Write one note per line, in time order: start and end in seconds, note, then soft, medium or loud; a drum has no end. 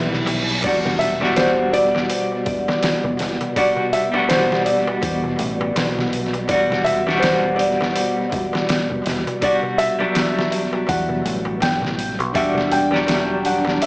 0.00 0.61 B1 loud
0.00 0.66 E3 medium
0.00 0.59 G3 loud
0.00 0.60 C4 medium
0.00 0.61 E4 loud
0.00 0.65 E4 medium
0.00 reverse cymbal medium
0.12 snare soft
0.12 darbuka tek soft
0.12 darbuka dum medium
0.26 open hi-hat medium
0.26 darbuka tek loud
0.47 closed hi-hat soft
0.47 darbuka tek soft
0.62 2.07 E1 medium
0.62 12.36 B2 medium
0.62 1.17 G3 medium
0.62 1.17 D4 medium
0.62 0.72 D5 loud
0.62 kick loud
0.62 open hi-hat medium
0.62 crash medium
0.62 impact medium
0.62 darbuka tek medium
0.66 1.18 F#4 medium
0.85 snare soft
0.85 darbuka tek soft
0.85 darbuka dum medium
0.99 1.34 E5 loud
0.99 open hi-hat medium
1.20 3.52 G3 medium
1.20 3.53 D4 medium
1.20 3.54 F#4 loud
1.20 snare soft
1.20 darbuka tek medium
1.36 1.74 C5 medium
1.36 snare loud
1.36 open hi-hat medium
1.36 darbuka tek medium
1.58 darbuka tek soft
1.73 3.16 D5 loud
1.73 open hi-hat medium
1.95 snare soft
1.95 darbuka tek medium
2.10 open hi-hat medium
2.10 darbuka tek medium
2.32 darbuka tek soft
2.46 2.65 E1 loud
2.46 kick loud
2.46 open hi-hat medium
2.68 snare medium
2.68 darbuka tek medium
2.83 snare loud
2.83 open hi-hat medium
2.83 darbuka tek medium
3.04 3.18 E1 medium
3.04 darbuka tek soft
3.04 darbuka dum medium
3.19 3.39 E1 medium
3.19 snare soft
3.19 open hi-hat medium
3.41 closed hi-hat soft
3.41 darbuka tek medium
3.41 darbuka dum medium
3.56 4.09 G3 medium
3.56 4.09 D4 medium
3.56 4.10 F#4 medium
3.56 3.65 D5 loud
3.56 kick loud
3.56 open hi-hat medium
3.56 darbuka tek medium
3.76 darbuka tek soft
3.76 darbuka dum medium
3.93 4.31 E5 loud
3.93 open hi-hat medium
4.12 6.44 G3 loud
4.12 6.45 D4 medium
4.12 6.46 F#4 loud
4.12 darbuka tek medium
4.29 4.67 C5 medium
4.29 snare loud
4.29 open hi-hat medium
4.29 darbuka tek medium
4.51 snare medium
4.51 darbuka tek soft
4.65 6.08 D5 medium
4.65 open hi-hat medium
4.87 darbuka tek medium
5.02 5.36 E2 medium
5.02 kick loud
5.02 open hi-hat medium
5.02 darbuka tek medium
5.24 darbuka tek soft
5.24 darbuka dum medium
5.39 5.75 A1 loud
5.39 open hi-hat medium
5.61 darbuka tek medium
5.76 6.46 B1 loud
5.76 snare loud
5.76 open hi-hat medium
5.76 darbuka tek medium
5.98 snare soft
5.98 darbuka tek soft
5.98 darbuka dum medium
6.13 open hi-hat medium
6.33 closed hi-hat soft
6.33 darbuka tek medium
6.48 7.93 E1 medium
6.48 7.02 G3 medium
6.48 7.02 D4 medium
6.48 7.03 F#4 medium
6.48 6.87 D5 loud
6.48 kick loud
6.48 open hi-hat medium
6.48 darbuka tek medium
6.70 snare soft
6.70 darbuka tek soft
6.70 darbuka dum medium
6.84 7.23 E5 loud
6.84 open hi-hat medium
7.07 9.38 G3 loud
7.07 9.39 D4 medium
7.07 9.39 F#4 loud
7.07 snare soft
7.07 darbuka tek medium
7.20 7.59 C5 medium
7.20 open hi-hat medium
7.20 darbuka tek medium
7.24 snare loud
7.43 darbuka tek soft
7.56 9.00 D5 medium
7.56 open hi-hat medium
7.81 snare soft
7.81 darbuka tek medium
7.96 open hi-hat medium
7.96 darbuka tek medium
8.17 darbuka tek soft
8.32 8.51 E1 medium
8.32 kick medium
8.32 open hi-hat medium
8.53 snare medium
8.53 darbuka tek medium
8.69 snare loud
8.69 open hi-hat medium
8.69 darbuka tek medium
8.89 9.04 E1 medium
8.89 darbuka tek soft
8.89 darbuka dum medium
9.06 9.24 E1 medium
9.06 snare soft
9.06 open hi-hat medium
9.27 closed hi-hat soft
9.27 darbuka tek medium
9.27 darbuka dum medium
9.41 9.95 G3 medium
9.41 9.96 D4 medium
9.41 9.96 F#4 medium
9.41 9.51 D5 loud
9.41 kick loud
9.41 open hi-hat medium
9.41 darbuka tek medium
9.63 darbuka tek soft
9.63 darbuka dum medium
9.78 10.47 E5 loud
9.78 open hi-hat medium
9.99 12.32 F#3 loud
9.99 12.30 G3 medium
9.99 12.31 D4 medium
9.99 darbuka tek medium
10.15 snare loud
10.15 open hi-hat medium
10.15 darbuka tek medium
10.36 snare soft
10.36 darbuka tek soft
10.52 open hi-hat medium
10.73 darbuka tek medium
10.87 11.21 E2 medium
10.87 11.64 F#5 loud
10.87 kick loud
10.87 open hi-hat medium
10.87 darbuka tek medium
11.09 darbuka tek soft
11.09 darbuka dum medium
11.25 11.62 A1 loud
11.25 open hi-hat medium
11.45 darbuka tek medium
11.60 11.81 G1 medium
11.60 12.16 G5 loud
11.60 snare loud
11.60 open hi-hat medium
11.60 darbuka tek medium
11.81 12.20 A1 medium
11.81 snare soft
11.81 darbuka tek soft
11.81 darbuka dum medium
11.99 open hi-hat medium
12.19 12.33 B1 medium
12.19 closed hi-hat soft
12.19 darbuka tek medium
12.33 13.78 E1 loud
12.33 12.87 G3 medium
12.33 13.86 D4 medium
12.33 12.88 D4 medium
12.33 12.88 F#4 medium
12.33 12.73 E5 medium
12.33 kick loud
12.33 open hi-hat medium
12.33 darbuka tek medium
12.54 snare soft
12.54 darbuka tek soft
12.54 darbuka dum medium
12.72 13.47 G5 loud
12.72 open hi-hat medium
12.91 13.86 G3 loud
12.91 13.86 D4 medium
12.91 snare soft
12.91 darbuka tek medium
12.95 13.86 F#3 loud
13.07 snare loud
13.07 open hi-hat medium
13.07 darbuka tek medium
13.28 darbuka tek soft
13.45 13.83 F#5 medium
13.45 open hi-hat medium
13.65 snare soft
13.65 darbuka tek medium
13.82 13.86 E5 medium
13.82 open hi-hat medium
13.82 darbuka tek medium